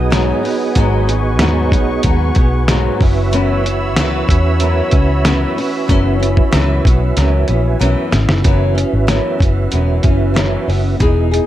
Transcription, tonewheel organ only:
0, 0, Header, 1, 2, 480
1, 0, Start_track
1, 0, Tempo, 640342
1, 572, Time_signature, 4, 2, 24, 8
1, 8593, End_track
2, 0, Start_track
2, 0, Title_t, "Tonewheel organ"
2, 0, Program_c, 0, 16
2, 0, Note_on_c, 0, 59, 67
2, 0, Note_on_c, 0, 66, 66
2, 0, Note_on_c, 0, 68, 68
2, 0, Note_on_c, 0, 75, 83
2, 1513, Note_off_c, 0, 75, 0
2, 1771, Note_on_c, 0, 80, 67
2, 1886, Note_off_c, 0, 80, 0
2, 1887, Note_on_c, 0, 78, 65
2, 2004, Note_off_c, 0, 78, 0
2, 2014, Note_on_c, 0, 75, 67
2, 2128, Note_off_c, 0, 75, 0
2, 2131, Note_on_c, 0, 71, 61
2, 2214, Note_off_c, 0, 59, 0
2, 2220, Note_off_c, 0, 66, 0
2, 2226, Note_off_c, 0, 68, 0
2, 2233, Note_on_c, 0, 61, 80
2, 2241, Note_on_c, 0, 66, 66
2, 2248, Note_off_c, 0, 71, 0
2, 2257, Note_on_c, 0, 71, 68
2, 2269, Note_on_c, 0, 76, 82
2, 5611, Note_on_c, 0, 83, 71
2, 5723, Note_off_c, 0, 83, 0
2, 5735, Note_on_c, 0, 80, 64
2, 5845, Note_off_c, 0, 80, 0
2, 5846, Note_on_c, 0, 78, 63
2, 6052, Note_off_c, 0, 61, 0
2, 6056, Note_off_c, 0, 66, 0
2, 6064, Note_off_c, 0, 71, 0
2, 6070, Note_off_c, 0, 76, 0
2, 6072, Note_off_c, 0, 78, 0
2, 6084, Note_on_c, 0, 76, 72
2, 6304, Note_on_c, 0, 61, 74
2, 6311, Note_off_c, 0, 76, 0
2, 6311, Note_on_c, 0, 66, 73
2, 6325, Note_on_c, 0, 71, 70
2, 6341, Note_on_c, 0, 76, 79
2, 8206, Note_off_c, 0, 61, 0
2, 8210, Note_off_c, 0, 66, 0
2, 8217, Note_off_c, 0, 71, 0
2, 8224, Note_on_c, 0, 59, 76
2, 8225, Note_off_c, 0, 76, 0
2, 8240, Note_on_c, 0, 64, 66
2, 8249, Note_on_c, 0, 68, 71
2, 8262, Note_on_c, 0, 75, 78
2, 8593, Note_off_c, 0, 59, 0
2, 8593, Note_off_c, 0, 64, 0
2, 8593, Note_off_c, 0, 68, 0
2, 8593, Note_off_c, 0, 75, 0
2, 8593, End_track
0, 0, End_of_file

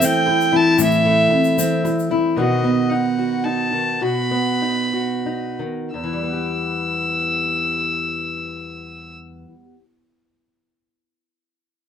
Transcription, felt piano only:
0, 0, Header, 1, 2, 480
1, 0, Start_track
1, 0, Key_signature, 1, "minor"
1, 0, Tempo, 527241
1, 722, Time_signature, 3, 2, 24, 8
1, 2643, Tempo, 555042
1, 3603, Tempo, 595829
1, 4083, Tempo, 636267
1, 4563, Tempo, 688863
1, 5043, Tempo, 720288
1, 9009, End_track
2, 0, Start_track
2, 0, Title_t, "Felt piano"
2, 0, Program_c, 0, 0
2, 0, Note_on_c, 0, 60, 69
2, 10, Note_on_c, 0, 52, 66
2, 244, Note_on_c, 0, 64, 73
2, 470, Note_off_c, 0, 52, 0
2, 484, Note_on_c, 0, 52, 59
2, 703, Note_off_c, 0, 52, 0
2, 717, Note_on_c, 0, 52, 91
2, 951, Note_off_c, 0, 52, 0
2, 964, Note_on_c, 0, 52, 63
2, 1186, Note_off_c, 0, 60, 0
2, 1200, Note_on_c, 0, 60, 62
2, 1420, Note_off_c, 0, 52, 0
2, 1434, Note_on_c, 0, 52, 64
2, 1660, Note_off_c, 0, 64, 0
2, 1674, Note_on_c, 0, 64, 68
2, 1902, Note_off_c, 0, 52, 0
2, 1916, Note_on_c, 0, 52, 58
2, 2205, Note_off_c, 0, 64, 0
2, 2206, Note_off_c, 0, 52, 0
2, 2207, Note_off_c, 0, 60, 0
2, 9009, End_track
0, 0, End_of_file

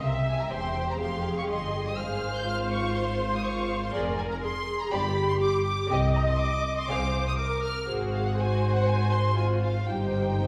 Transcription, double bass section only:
0, 0, Header, 1, 2, 480
1, 0, Start_track
1, 0, Key_signature, -4, "minor"
1, 0, Tempo, 490597
1, 26, Time_signature, 4, 2, 24, 8
1, 3861, Key_signature, -3, "minor"
1, 7707, Tempo, 505902
1, 10168, End_track
2, 0, Start_track
2, 0, Title_t, "Double bass section"
2, 0, Program_c, 0, 48
2, 27, Note_on_c, 0, 36, 42
2, 498, Note_off_c, 0, 36, 0
2, 507, Note_on_c, 0, 28, 46
2, 978, Note_off_c, 0, 28, 0
2, 988, Note_on_c, 0, 29, 47
2, 1458, Note_off_c, 0, 29, 0
2, 1472, Note_on_c, 0, 31, 48
2, 1939, Note_off_c, 0, 31, 0
2, 1949, Note_on_c, 0, 32, 52
2, 3861, Note_on_c, 0, 29, 66
2, 3862, Note_off_c, 0, 32, 0
2, 4260, Note_off_c, 0, 29, 0
2, 4820, Note_on_c, 0, 31, 59
2, 5218, Note_off_c, 0, 31, 0
2, 5780, Note_on_c, 0, 36, 62
2, 6181, Note_off_c, 0, 36, 0
2, 6744, Note_on_c, 0, 36, 54
2, 7146, Note_off_c, 0, 36, 0
2, 7710, Note_on_c, 0, 32, 54
2, 9576, Note_off_c, 0, 32, 0
2, 9613, Note_on_c, 0, 31, 49
2, 10168, Note_off_c, 0, 31, 0
2, 10168, End_track
0, 0, End_of_file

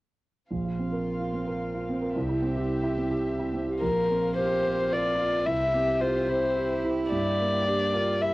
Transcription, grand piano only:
0, 0, Header, 1, 2, 480
1, 0, Start_track
1, 0, Tempo, 550964
1, 439, Time_signature, 3, 2, 24, 8
1, 7263, End_track
2, 0, Start_track
2, 0, Title_t, "Grand piano"
2, 0, Program_c, 0, 0
2, 444, Note_on_c, 0, 34, 27
2, 565, Note_on_c, 0, 65, 25
2, 581, Control_c, 0, 64, 127
2, 686, Note_on_c, 0, 60, 23
2, 756, Note_off_c, 0, 65, 0
2, 803, Note_on_c, 0, 70, 26
2, 876, Note_off_c, 0, 60, 0
2, 1042, Note_on_c, 0, 65, 27
2, 1163, Note_on_c, 0, 60, 28
2, 1184, Note_off_c, 0, 70, 0
2, 1231, Note_off_c, 0, 65, 0
2, 1280, Note_on_c, 0, 70, 31
2, 1351, Note_off_c, 0, 60, 0
2, 1520, Note_on_c, 0, 65, 29
2, 1644, Note_on_c, 0, 60, 31
2, 1658, Note_off_c, 0, 70, 0
2, 1707, Note_off_c, 0, 65, 0
2, 1753, Note_on_c, 0, 70, 31
2, 1828, Note_off_c, 0, 60, 0
2, 1837, Note_off_c, 0, 34, 0
2, 1870, Note_off_c, 0, 70, 0
2, 1876, Note_on_c, 0, 36, 39
2, 1887, Control_c, 0, 64, 0
2, 1990, Note_on_c, 0, 64, 35
2, 2033, Control_c, 0, 64, 127
2, 2107, Note_on_c, 0, 60, 34
2, 2176, Note_off_c, 0, 64, 0
2, 2227, Note_on_c, 0, 67, 36
2, 2294, Note_off_c, 0, 60, 0
2, 2465, Note_on_c, 0, 64, 35
2, 2585, Note_on_c, 0, 60, 31
2, 2606, Note_off_c, 0, 67, 0
2, 2655, Note_off_c, 0, 64, 0
2, 2704, Note_on_c, 0, 67, 36
2, 2777, Note_off_c, 0, 60, 0
2, 2951, Note_on_c, 0, 64, 32
2, 3076, Note_on_c, 0, 60, 27
2, 3098, Note_off_c, 0, 67, 0
2, 3149, Note_off_c, 0, 64, 0
2, 3202, Note_on_c, 0, 67, 25
2, 3273, Note_off_c, 0, 60, 0
2, 3288, Note_off_c, 0, 36, 0
2, 3323, Note_off_c, 0, 67, 0
2, 3323, Note_on_c, 0, 34, 35
2, 3336, Control_c, 0, 64, 0
2, 3473, Control_c, 0, 64, 127
2, 3569, Note_on_c, 0, 60, 26
2, 3806, Note_on_c, 0, 70, 32
2, 3954, Note_off_c, 0, 60, 0
2, 4049, Note_on_c, 0, 72, 31
2, 4191, Note_off_c, 0, 70, 0
2, 4286, Note_on_c, 0, 70, 32
2, 4432, Note_off_c, 0, 72, 0
2, 4521, Note_on_c, 0, 65, 28
2, 4670, Note_off_c, 0, 70, 0
2, 4733, Note_off_c, 0, 34, 0
2, 4759, Note_on_c, 0, 36, 31
2, 4763, Note_off_c, 0, 65, 0
2, 4783, Control_c, 0, 64, 0
2, 4924, Control_c, 0, 64, 127
2, 5003, Note_on_c, 0, 60, 26
2, 5239, Note_on_c, 0, 67, 34
2, 5382, Note_off_c, 0, 60, 0
2, 5473, Note_on_c, 0, 72, 32
2, 5621, Note_off_c, 0, 67, 0
2, 5717, Note_on_c, 0, 67, 34
2, 5859, Note_off_c, 0, 72, 0
2, 5962, Note_on_c, 0, 64, 32
2, 6102, Note_off_c, 0, 67, 0
2, 6160, Note_off_c, 0, 36, 0
2, 6201, Note_off_c, 0, 64, 0
2, 6201, Note_on_c, 0, 43, 32
2, 6214, Control_c, 0, 64, 0
2, 6333, Control_c, 0, 64, 127
2, 6448, Note_on_c, 0, 58, 30
2, 6684, Note_on_c, 0, 67, 31
2, 6825, Note_off_c, 0, 58, 0
2, 6921, Note_on_c, 0, 70, 36
2, 7062, Note_off_c, 0, 67, 0
2, 7153, Note_on_c, 0, 67, 36
2, 7263, Note_off_c, 0, 43, 0
2, 7263, Note_off_c, 0, 67, 0
2, 7263, Note_off_c, 0, 70, 0
2, 7263, End_track
0, 0, End_of_file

